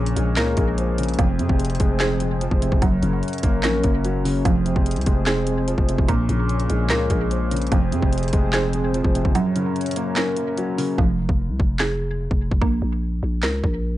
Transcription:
Already playing: A#1 A#2 C#3 F3 A#3 G#4 C#5
0.06 closed hi-hat
0.17 A#1 G#3, closed hi-hat
0.36 C#2 A#3 A#4, snare, clap, closed hi-hat
0.57 A#1 G#3, kick, closed hi-hat
0.78 F3, closed hi-hat
0.98 C#3, closed hi-hat
1.03 closed hi-hat
1.08 closed hi-hat
1.14 closed hi-hat
1.19 F1 F2 F3 C4 C5, kick, closed hi-hat
1.39 F2 C3, closed hi-hat
1.49 F1, kick
1.60 closed hi-hat
1.65 closed hi-hat
1.70 closed hi-hat
1.75 closed hi-hat
1.80 F1 G#3, kick, closed hi-hat
2.00 C4 G#4, snare, clap, closed hi-hat
2.20 G#3, closed hi-hat
2.41 F3, closed hi-hat
2.51 F1, kick
2.62 C3, closed hi-hat
2.72 F1, kick
2.82 F#1 F#2 F#3 C#4 A#4 C#5, kick, closed hi-hat
3.02 F#1 C#3, closed hi-hat
3.23 closed hi-hat
3.28 closed hi-hat
3.33 closed hi-hat
3.38 closed hi-hat
3.43 F#1 A#3, kick, closed hi-hat
3.63 A#1 C#4 A#4, snare, clap, closed hi-hat
3.83 F#1 A#3, kick, closed hi-hat
4.05 F#3, closed hi-hat
4.25 C#3, open hi-hat
4.45 F1 F2 F3 C4 G#4 C5, kick, closed hi-hat
4.66 C3, closed hi-hat
4.76 F1, kick
4.86 closed hi-hat
4.91 closed hi-hat
4.96 C2, closed hi-hat
5.01 closed hi-hat
5.06 F1 G#3, kick, closed hi-hat
5.26 C4 G#4, snare, clap, closed hi-hat
5.47 G#3, closed hi-hat
5.68 F3, closed hi-hat
5.78 F1, kick
5.89 C3, closed hi-hat
5.98 F1, kick
6.08 A#1 A#2 A#3 G#4 C#5, kick, closed hi-hat
6.29 A#1 C#3, closed hi-hat
6.49 closed hi-hat
6.60 closed hi-hat
6.70 A#1 G#3, closed hi-hat
6.90 C#2 A#3 A#4, snare, clap, closed hi-hat
7.10 A#1 G#3, kick, closed hi-hat
7.31 F3, closed hi-hat
7.51 C#3, closed hi-hat
7.56 closed hi-hat
7.62 closed hi-hat
7.67 closed hi-hat
7.72 F1 F2 F3 C4 G#4 C5, kick, closed hi-hat
7.92 F2 C3, closed hi-hat
8.02 F1, kick
8.13 closed hi-hat
8.18 closed hi-hat
8.23 closed hi-hat
8.28 closed hi-hat
8.33 F1 G#3, kick, closed hi-hat
8.53 C4 G#4, snare, clap, closed hi-hat
8.73 G#3, closed hi-hat
8.94 F3, closed hi-hat
9.04 F1, kick
9.15 C3, closed hi-hat
9.25 F#1, kick
9.35 F#2 F#3 C#4 A#4 C#5, closed hi-hat
9.56 C#3, closed hi-hat
9.76 closed hi-hat
9.81 closed hi-hat
9.86 closed hi-hat
9.91 closed hi-hat
9.96 A#3, closed hi-hat
10.16 C#4 A#4, snare, clap, closed hi-hat
10.37 A#3, closed hi-hat
10.58 F#3, closed hi-hat
10.78 C#3, open hi-hat
10.98 F1 F3, kick
11.29 F1, kick
11.49 C2
11.60 F1, kick
11.79 G#4, snare, clap
12.31 F1, kick
12.51 F1, kick
12.62 A#1 A#3, kick
12.82 A#1
13.23 A#1
13.43 C#2 A#4, snare, clap
13.64 A#1, kick

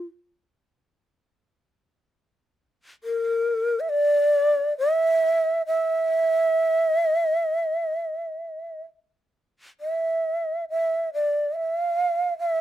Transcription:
3.04 A#4
3.80 E5
3.89 D5
4.78 E5
5.67 E5
9.80 E5
10.70 E5
11.14 D5
11.57 E5
11.77 F5
12.39 E5

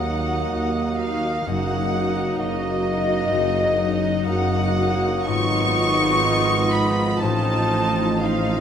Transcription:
Already playing: D#2 D#3 F#3 A#3 D#4 F#4 A#4 D#5 F#5
0.04 D#4 F#4
0.20 D#5
0.52 D#2 A#4
0.83 D#5
0.97 D#4 F#4 F5
1.15 A#3
1.44 F#1 F#2 F#3 A#3 D#4 F#4 D#5 F#5
1.78 A#3
1.92 D#4 F#4
2.09 D#5
2.38 F#1 F#2 A#3 F#4 A#4 D#5
2.70 D#5
2.84 D#4 F#4
3.01 A#3
3.31 F#1 F#2
3.63 F#3
3.78 D#4 F#4
3.94 D#5
4.25 F#1 F#2 A#3 F#4 A#4 D#5 F#5
4.59 D#5
4.77 D#4 F#4
4.94 A#3
5.26 G#1 G#2 B3 D#4 F4 D#5 C#6
5.61 B3
5.94 D#5
6.25 F3 B4
6.59 D#5
6.73 B5
6.90 B3
7.21 A1 A2 C4 D#4 F4 D#5 A5
7.55 C4
7.89 D#5
8.20 C4 D#4 F4 C5 D#5 F5

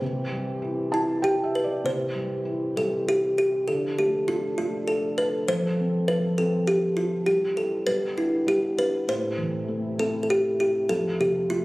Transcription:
Already playing: G4 C5
0.01 C3 E3 C4
0.32 G3
0.62 E4
0.92 E4 G4 A5
1.22 G4 G5
1.44 E5
1.55 B4
1.64 D5
1.84 C3 E3 C4 G4 C5
2.15 G3
2.45 E4
2.76 G3 A4
3.09 G4
3.38 G4
3.67 D3 F3 D4 A4
3.98 A3 G4
4.28 D4 F4
4.58 A3 F4
4.88 A4
5.18 B4
5.48 F3 C4 C5
5.79 C4
6.08 F3 B4
6.38 C4 A4
6.67 G4
6.97 F4
7.26 G2 E3 G3 G4
7.56 E4 A4
7.86 D3 G3 B3 G4 B4
8.17 D4 E4
8.46 G3 G4
8.78 D4 B4
9.08 A2 C3 A3 E4 C5
9.38 E3
9.68 A3
9.99 C4 A4
10.23 A4
10.30 G4
10.60 G4
10.89 F2 F4 A4
11.20 C3 G4
11.50 A3 F4

